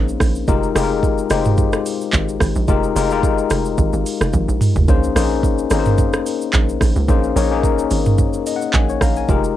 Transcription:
Already playing: log drum bass A#1, tine electric piano A#3 C4 C#4 D#4 G#4 A#4 C5
0.09 shaker
0.20 log drum bass A#1, kick, cross-stick, open hi-hat, shaker
0.35 shaker
0.48 log drum bass F1, tine electric piano G#3 D#4 F4 G4 A#4, kick, shaker
0.63 shaker
0.75 log drum bass F1, tine electric piano G#3 D#4 F4 G4 G#4, cross-stick, open hi-hat, shaker
0.83 tine electric piano A#4
1.03 kick, shaker
1.18 shaker
1.30 log drum bass F1, tine electric piano G#3 D#4 F4 G4 C5, cross-stick, open hi-hat, shaker
1.45 mid tom, shaker
1.58 kick, shaker
1.73 cross-stick, shaker
1.86 open hi-hat, shaker
2.01 shaker
2.13 log drum bass G#1, kick, clap, shaker
2.29 shaker
2.40 log drum bass G#1, kick, cross-stick, open hi-hat, shaker
2.56 log drum bass A#1, shaker
2.68 log drum bass F1, tine electric piano G#3 D#4 F4 G4 A#4, kick, shaker
2.83 shaker
2.96 log drum bass F1, tine electric piano G#3 D#4 F4 G4 A#4, open hi-hat, shaker
3.11 tine electric piano G#3 D#4 F4 G4 A#4, shaker
3.23 kick, shaker
3.38 shaker
3.50 log drum bass F1, cross-stick, open hi-hat, shaker
3.65 shaker
3.78 log drum bass G#1, kick, shaker
3.93 log drum bass G#1, shaker
4.06 open hi-hat, shaker
4.21 log drum bass F1, cross-stick, shaker
4.33 log drum bass G#1, kick, high tom, shaker
4.48 log drum bass A#1, shaker
4.61 mid tom, open hi-hat, shaker
4.76 log drum bass F1, floor tom, shaker
4.88 log drum bass A#1, tine electric piano A#3 C#4 D#4 G#4 C5, kick, shaker
5.04 shaker
5.16 log drum bass A#1, tine electric piano A#3 C#4 D#4 G#4 C5, cross-stick, open hi-hat, shaker
5.43 kick, shaker
5.58 shaker
5.71 log drum bass G#1, tine electric piano A#3 C#4 D#4 G#4 A#4, cross-stick, open hi-hat, shaker
5.79 tine electric piano C5
5.86 mid tom, shaker
5.98 kick, shaker
6.13 cross-stick, shaker
6.26 open hi-hat, shaker
6.42 shaker
6.53 log drum bass A#1, kick, clap, shaker
6.69 shaker
6.81 log drum bass A#1, kick, cross-stick, open hi-hat, shaker
6.96 log drum bass C#2, shaker
7.08 log drum bass A#1, tine electric piano A#3 C#4 D#4 G#4 C5, kick, shaker
7.24 shaker
7.36 log drum bass A#1, tine electric piano A#3 C#4 D#4 G#4 C#5, open hi-hat, shaker
7.51 tine electric piano A#3 C#4 D#4 G#4 A#4
7.63 kick, shaker
7.79 shaker
7.91 log drum bass G#1, open hi-hat, shaker
8.06 mid tom, shaker
8.18 kick, shaker
8.34 shaker
8.47 tine electric piano D#5, open hi-hat, shaker
8.56 tine electric piano F#5
8.62 shaker
8.73 log drum bass A#1, tine electric piano G#5, kick, clap, shaker
8.89 tine electric piano C#5, shaker
9.01 log drum bass A#1, tine electric piano F5 A#5, kick, cross-stick, open hi-hat, shaker
9.16 tine electric piano G#5, shaker
9.29 log drum bass F1, tine electric piano G#3 D#4 F4 G4 A#4, kick, shaker
9.44 shaker

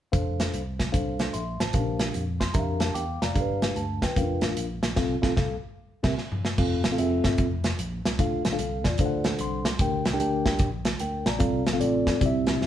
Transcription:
0.12 fingered electric bass F1, tine electric piano D4 A4 C5 F5, kick, closed hi-hat
0.40 snare, closed hi-hat
0.54 fingered electric bass C2, closed hi-hat
0.79 kick, snare, closed hi-hat
0.92 fingered electric bass C2, tine electric piano D4 A4 C5 F5, kick, closed hi-hat
1.19 snare, closed hi-hat
1.33 fingered electric bass A#1, tine electric piano E5 C6, closed hi-hat
1.60 fingered electric bass A1, tine electric piano C5 A5, snare, closed hi-hat
1.73 fingered electric bass A#1, tine electric piano A#2 C#4 G4 A#4 F5, kick, closed hi-hat
1.78 tine electric piano D4
1.99 snare, closed hi-hat
2.14 fingered electric bass F2, closed hi-hat
2.40 tine electric piano C6, kick, snare, closed hi-hat
2.54 fingered electric bass F2, tine electric piano D4 G4 A#4 E5 A#5, kick, closed hi-hat
2.59 tine electric piano F5
2.80 tine electric piano A5, snare, closed hi-hat
2.94 fingered electric bass E2, tine electric piano F5 G5 D6, closed hi-hat
3.22 fingered electric bass F1, tine electric piano D5 F5 A#5, snare, closed hi-hat
3.35 fingered electric bass G1, tine electric piano G2 D4 G4 A4 F5, kick, closed hi-hat
3.40 tine electric piano B4
3.62 snare, closed hi-hat
3.76 fingered electric bass D2, tine electric piano A5, closed hi-hat
4.02 tine electric piano B4 G5, kick, snare, closed hi-hat
4.16 fingered electric bass F1, tine electric piano C#4 F4 A#4 F5, kick, closed hi-hat
4.21 tine electric piano D4
4.41 fingered electric bass A1, snare, closed hi-hat
4.57 fingered electric bass A#1, closed hi-hat
4.83 fingered electric bass A#1, snare, closed hi-hat
4.96 fingered electric bass C2, tine electric piano C3 C4 F4 A4 F5, kick, snare, crash
5.22 fingered electric bass C2, tine electric piano C3 C4 F4 A4 F5, kick, snare
5.37 fingered electric bass C2, tine electric piano A4 F5, kick, snare
6.03 fingered electric bass C2, tine electric piano C3 C4 G4 A#4 E5, kick, snare, crash
6.18 snare
6.32 mid tom
6.45 snare
6.58 fingered electric bass F1, tine electric piano C4 F4 A4 F5, kick, crash
6.84 fingered electric bass A1, snare, closed hi-hat
6.92 tine electric piano C4 F4 A4 F5
6.98 fingered electric bass F1, tine electric piano C4 F4 G#4 E5, closed hi-hat
7.03 tine electric piano A4
7.24 fingered electric bass G1, kick, snare, closed hi-hat
7.38 fingered electric bass F1, kick, closed hi-hat
7.64 snare, closed hi-hat
7.79 fingered electric bass A#1, closed hi-hat
8.05 fingered electric bass C2, snare, closed hi-hat
8.19 fingered electric bass D2, tine electric piano D3 D4 F4 A4 F5, kick, closed hi-hat
8.45 fingered electric bass A#1, snare, closed hi-hat
8.52 tine electric piano D4 F4 A4 F5
8.59 fingered electric bass C2, tine electric piano A4 F5, closed hi-hat
8.84 fingered electric bass E2, tine electric piano F4 D5, kick, snare, closed hi-hat
8.98 fingered electric bass D2, tine electric piano D3 D4 A4 C5 F5, kick, closed hi-hat
9.06 tine electric piano F#5
9.24 snare, closed hi-hat
9.39 fingered electric bass C2, tine electric piano C6, closed hi-hat
9.65 snare, closed hi-hat
9.79 fingered electric bass D2, tine electric piano D3 D4 G4 A#4 G5, kick, closed hi-hat
10.05 fingered electric bass C2, snare, closed hi-hat
10.13 tine electric piano D4 G4 A#4 G5
10.20 fingered electric bass D2, tine electric piano D4 G4 A#4 G5, closed hi-hat
10.46 fingered electric bass C2, kick, snare, closed hi-hat
10.59 fingered electric bass A#1, kick, closed hi-hat
10.85 snare, closed hi-hat
10.99 fingered electric bass D2, tine electric piano A#4 G5, closed hi-hat
11.26 fingered electric bass A#1, tine electric piano D5 A#5, snare, closed hi-hat
11.39 fingered electric bass C2, tine electric piano C3 C4 F4 A4 F5, kick, closed hi-hat
11.66 fingered electric bass A#1, snare, closed hi-hat
11.73 tine electric piano C4 F4 A4 F5
11.80 fingered electric bass A1, tine electric piano C4 F4 A4 D5, closed hi-hat
12.07 kick, snare, closed hi-hat
12.20 fingered electric bass C2, tine electric piano C3 C4 E4 G4 D5, kick, closed hi-hat
12.26 tine electric piano E5
12.47 snare, closed hi-hat
12.61 fingered electric bass F1, snare

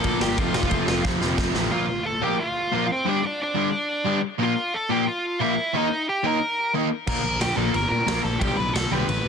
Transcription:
Already playing: lead electric guitar A4 A5
0.04 picked electric bass A#1, overdriven electric guitar A#2 F3 A#3, kick, ride
0.20 picked electric bass G1, overdriven electric guitar A#2 F3 A#3, lead electric guitar G4 G5, snare
0.38 picked electric bass F1, overdriven electric guitar F2 C3 F3, lead electric guitar F4 F5, kick, ride
0.53 picked electric bass F1, overdriven electric guitar F2 C3 F3, snare
0.63 kick
0.70 picked electric bass F1, overdriven electric guitar F2 C3 F3, kick, ride
0.88 picked electric bass F1, overdriven electric guitar F2 C3 F3, snare
1.05 picked electric bass F1, overdriven electric guitar F2 C3 F3, kick, snare
1.21 picked electric bass F1, overdriven electric guitar F2 C3 F3, snare
1.38 picked electric bass F1, overdriven electric guitar F2 C3 F3, kick, snare
1.54 picked electric bass A1, overdriven electric guitar F2 C3 F3, snare
1.71 overdriven electric guitar A#2 F3 A#3, lead electric guitar F4 F5
2.05 lead electric guitar A4 A5
2.21 overdriven electric guitar A#2 F3 A#3, lead electric guitar G4 G5
2.39 lead electric guitar F4 F5
2.72 overdriven electric guitar A#2 F3 A#3
2.91 lead electric guitar C4 C5
3.05 overdriven electric guitar G2 D3 G3, lead electric guitar D4
3.09 lead electric guitar D5
3.25 lead electric guitar D4 D5
3.42 lead electric guitar D4 D5
3.55 overdriven electric guitar G2 D3 G3
4.06 overdriven electric guitar G2 D3 G3
4.39 overdriven electric guitar A#2 F3 A#3, lead electric guitar F4
4.44 lead electric guitar F5
4.74 lead electric guitar A4 A5
4.90 overdriven electric guitar A#2 F3 A#3, lead electric guitar G4 G5
5.07 lead electric guitar F4 F5
5.40 overdriven electric guitar A#2 F3 A#3, lead electric guitar E4 E5
5.74 overdriven electric guitar D#3 A#3 D#4, lead electric guitar D#4 D#5
6.09 lead electric guitar G4 G5
6.23 overdriven electric guitar D#3 A#3 D#4, lead electric guitar A#4 A#5
6.74 overdriven electric guitar D#3 A#3 D#4
7.07 picked electric bass A#1, overdriven electric guitar A#2 F3 A#3, lead electric guitar A#4 A#5, kick, crash
7.24 picked electric bass A#1
7.40 picked electric bass A#1, lead electric guitar G4 G5, snare, ride
7.56 picked electric bass A#1, overdriven electric guitar A#2 F3 A#3, lead electric guitar A4 A5
7.74 picked electric bass G1, lead electric guitar A#4 A#5, ride
7.89 picked electric bass A#2, lead electric guitar A#4 A#5
8.06 picked electric bass A#1, overdriven electric guitar A#2 F3 A#3, snare, ride
8.23 picked electric bass A#1, lead electric guitar A4 A5
8.39 picked electric bass B1, overdriven electric guitar G2 D3 G3, lead electric guitar G4 G5, kick, ride
8.57 picked electric bass B1, lead electric guitar B4 B5
8.73 picked electric bass B1, lead electric guitar A4 A5, snare, ride
8.91 picked electric bass B1, overdriven electric guitar G2 D3 G3, lead electric guitar B4 B5
9.08 picked electric bass A1, ride
9.25 picked electric bass B2

